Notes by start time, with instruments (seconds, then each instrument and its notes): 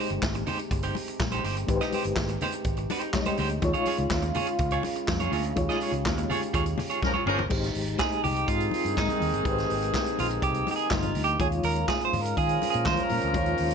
Already playing: french horn section C3 G#3 G4, reed electric piano G#3 D#4 G4 C5
0.00 clean electric guitar C5
0.10 fingered electric bass G1, muted clean electric guitar stroke, closed hi-hat
0.22 fingered electric bass G#1, kick, snare, clap, high conga
0.35 muted clean electric guitar stroke, closed hi-hat
0.47 clean electric guitar D#4 G4 C5, open hi-hat, low conga
0.59 muted clean electric guitar stroke, closed hi-hat
0.71 fingered electric bass G1, muted clean electric guitar stroke, kick, closed hi-hat
0.83 clean electric guitar D#4 G4 C5, closed hi-hat
0.95 muted clean electric guitar stroke, open hi-hat, muted conga
1.08 muted clean electric guitar stroke, closed hi-hat
1.20 fingered electric bass A#1, muted clean electric guitar stroke, kick, snare, clap, high conga
1.31 clean electric guitar D#4 G4 C5, closed hi-hat, high conga
1.44 fingered electric bass G1, clean electric guitar D#4 G4 C5, open hi-hat
1.56 muted clean electric guitar stroke, closed hi-hat
1.67 fingered electric bass G#1, reed electric piano G#3 D#4 G4 B4, muted clean electric guitar stroke, kick, closed hi-hat, muted conga
1.76 reed electric piano C5
1.81 clean electric guitar D#4 G4 D#5, snare, closed hi-hat
1.92 clean electric guitar D#4 G4 C5, open hi-hat, muted conga
2.04 fingered electric bass G1, muted clean electric guitar stroke, closed hi-hat
2.16 fingered electric bass G#1, kick, snare, clap, high conga
2.28 muted clean electric guitar stroke, closed hi-hat
2.41 clean electric guitar D#4 G4 C5, open hi-hat, low conga
2.52 muted clean electric guitar stroke, closed hi-hat
2.64 fingered electric bass G#1, kick, closed hi-hat
2.77 muted clean electric guitar stroke, closed hi-hat
2.90 clean electric guitar D#4 G4 C5, open hi-hat, muted conga
3.01 muted clean electric guitar stroke, closed hi-hat
3.13 reed electric piano G#3 D#4 G4 C#5, muted clean electric guitar stroke, kick, snare, clap, high conga
3.22 reed electric piano D#5, closed hi-hat, high conga
3.26 clean electric guitar D#4 G4 C5
3.37 fingered electric bass D2, clean electric guitar D#4 G4 C5, open hi-hat
3.50 muted clean electric guitar stroke, closed hi-hat
3.62 fingered electric bass D#2, french horn section C#3 G#3 F4, reed electric piano G3 D#4 F4 C#5, muted clean electric guitar stroke, kick, closed hi-hat, muted conga
3.68 reed electric piano G#3
3.74 clean electric guitar F4 G#4 C#5, closed hi-hat
3.85 clean electric guitar F4 G#4 C#5, open hi-hat, muted conga
3.98 fingered electric bass C#2, muted clean electric guitar stroke, closed hi-hat
4.10 fingered electric bass D#2, kick, snare, clap, high conga
4.22 muted clean electric guitar stroke, closed hi-hat
4.34 clean electric guitar F4 G#4 C#5, open hi-hat, low conga
4.47 muted clean electric guitar stroke, closed hi-hat
4.59 fingered electric bass C#2, muted clean electric guitar stroke, kick, closed hi-hat
4.71 clean electric guitar F4 G#4 C#5, closed hi-hat
4.83 muted clean electric guitar stroke, open hi-hat, muted conga
4.96 muted clean electric guitar stroke, closed hi-hat
5.08 fingered electric bass F2, muted clean electric guitar stroke, kick, snare, clap, high conga
5.20 clean electric guitar F4 G#4 C#5, closed hi-hat, high conga
5.32 fingered electric bass D2, clean electric guitar F4 G#4 C#5, open hi-hat
5.44 muted clean electric guitar stroke, closed hi-hat
5.56 fingered electric bass D#2, reed electric piano G#3 D#4 F4 C#5, french horn section G4, muted clean electric guitar stroke, kick, closed hi-hat, muted conga
5.69 clean electric guitar F4 G#4 D#5, snare, closed hi-hat
5.81 clean electric guitar F4 G#4 C#5, open hi-hat
5.92 fingered electric bass C#2, muted clean electric guitar stroke, closed hi-hat
6.05 fingered electric bass D#2, kick, snare, clap, high conga
6.18 muted clean electric guitar stroke, closed hi-hat
6.30 clean electric guitar F4 G#4 C#5, open hi-hat, low conga
6.42 muted clean electric guitar stroke, closed hi-hat
6.54 fingered electric bass D#2, clean electric guitar F4 G#4 C#5, kick, closed hi-hat
6.66 muted clean electric guitar stroke, closed hi-hat
6.78 muted clean electric guitar stroke, open hi-hat, muted conga, low conga
6.90 clean electric guitar F4 G#4 C#5, closed hi-hat
7.02 horn section F3 C#4 A#4, muted clean electric guitar stroke, kick, snare, high conga
7.14 clean electric guitar F4 G#4 C#5, high conga
7.26 fingered electric bass G1, horn section F3 C#4 A#4, clean electric guitar F4 G#4 C#5, mid tom
7.39 muted clean electric guitar stroke, floor tom
7.50 fingered electric bass G#1, french horn section C3 G#3 D#4, reed electric piano G#3 D#4 G4 C5, kick, crash, muted conga
7.64 snare, closed hi-hat
7.75 fingered electric bass G#1, open hi-hat
7.88 closed hi-hat
7.99 clean electric guitar G#4, kick, snare, clap, high conga
8.12 closed hi-hat
8.24 fingered electric bass C2, clean electric guitar G4, open hi-hat, low conga
8.36 closed hi-hat
8.48 fingered electric bass G#2, horn section D#3 C4 G#4, clean electric guitar F4, kick, closed hi-hat
8.60 closed hi-hat
8.71 open hi-hat, muted conga
8.85 fingered electric bass G2, closed hi-hat
8.97 fingered electric bass G#2, clean electric guitar D#4, kick, snare, clap, high conga
9.08 closed hi-hat, high conga
9.20 fingered electric bass D#2, open hi-hat, high conga
9.33 fingered electric bass G1, closed hi-hat
9.43 fingered electric bass G#1, reed electric piano G#3 D#4 G4 B4, french horn section A#3, kick, closed hi-hat, muted conga
9.52 reed electric piano C5
9.58 snare, closed hi-hat
9.70 fingered electric bass G#1, open hi-hat
9.83 closed hi-hat
9.94 kick, snare, clap, high conga
10.06 closed hi-hat
10.18 fingered electric bass A#1, clean electric guitar F4, open hi-hat, low conga
10.31 closed hi-hat
10.42 fingered electric bass C2, clean electric guitar G4, kick, closed hi-hat
10.54 closed hi-hat
10.67 open hi-hat, muted conga
10.71 clean electric guitar G4
10.76 clean electric guitar G#4, closed hi-hat
10.91 fingered electric bass G1, clean electric guitar F4, kick, snare, clap, high conga
11.02 closed hi-hat, high conga
11.15 fingered electric bass D2, open hi-hat, high conga
11.24 clean electric guitar G4, closed hi-hat
11.38 fingered electric bass D#2, french horn section C#3 G#3 F4, reed electric piano G3 D#4 F4 C#5, clean electric guitar G#4, kick, closed hi-hat, muted conga
11.45 reed electric piano G#3
11.52 closed hi-hat
11.63 fingered electric bass D#2, clean electric guitar A#4, open hi-hat, muted conga
11.76 closed hi-hat
11.88 clean electric guitar G#4, kick, snare, clap, high conga
12.01 clean electric guitar C5, closed hi-hat
12.13 fingered electric bass G#2, open hi-hat, low conga
12.21 clean electric guitar A#4
12.25 closed hi-hat
12.37 fingered electric bass D#3, horn section F3 C#4 A#4, clean electric guitar G#4, kick, closed hi-hat
12.49 closed hi-hat
12.62 open hi-hat, muted conga
12.70 clean electric guitar G#4, closed hi-hat
12.75 fingered electric bass A#2
12.86 fingered electric bass D#3, clean electric guitar C5, kick, snare, clap, high conga
12.97 closed hi-hat, high conga
13.03 clean electric guitar A#4
13.09 fingered electric bass A#2, open hi-hat, high conga
13.22 fingered electric bass D2, closed hi-hat
13.34 fingered electric bass D#2, reed electric piano G#3 D#4 F4 C#5, kick, closed hi-hat, muted conga
13.46 closed hi-hat
13.57 fingered electric bass D#2, open hi-hat
13.70 closed hi-hat